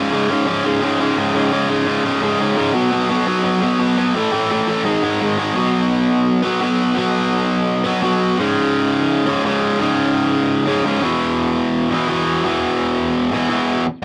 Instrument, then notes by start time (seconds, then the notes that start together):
overdriven electric guitar
Already playing: C#2 G#2 C#3
0.11 C#2 G#2 C#3
0.29 C#2 G#2 C#3
0.46 C#2 G#2 C#3
0.64 C#2 G#2 C#3
0.82 C#2 G#2 C#3
1.00 C#2 G#2 C#3
1.17 C#2 G#2 C#3
1.34 C#2 G#2 C#3
1.52 C#2 G#2 C#3
1.69 C#2 G#2 C#3
1.86 C#2 G#2 C#3
2.04 C#2 G#2 C#3
2.22 C#2 G#2 C#3
2.39 C#2 G#2 C#3
2.57 C#2 G#2 C#3
2.74 B2 F#3 B3
2.92 B2 F#3 B3
3.10 B2 F#3 B3
3.26 B2 F#3 B3
3.44 B2 F#3 B3
3.62 B2 F#3 B3
3.79 B2 F#3 B3
3.97 B2 F#3 B3
4.15 A2 E3 A3
4.32 A2 E3 A3
4.51 A2 E3 A3
4.68 A2 E3 A3
4.85 G#2 D#3 G#3
5.03 G#2 D#3 G#3
5.20 G#2 D#3 G#3
5.38 G#2 D#3 G#3
5.54 B2 F#3 B3
6.42 B2 F#3 B3
6.60 B2 F#3 B3
6.94 B2 F#3 B3
7.84 B2 F#3 B3
8.02 B2 F#3 B3
8.37 C#2 G#2 C#3
9.26 C#2 G#2 C#3
9.43 C#2 G#2 C#3
9.79 C#2 G#2 C#3
10.67 C#2 G#2 C#3
10.84 C#2 G#2 C#3
11.01 E2 B2 E3
11.90 E2 B2 E3
12.08 E2 B2 E3
12.43 E2 B2 E3
13.31 E2 B2 E3
13.49 E2 B2 E3